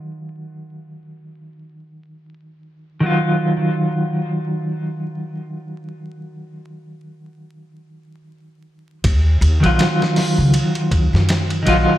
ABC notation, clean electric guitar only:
X:1
M:4/4
L:1/16
Q:"Swing 16ths" 1/4=80
K:Ebm
V:1 name="Clean electric guitar" clef=bass
[E,G,F]16 | [E,G,F]16- | [E,G,F]16 | z3 [E,G,F]8- [E,G,F]3 [E,G,F]2 |]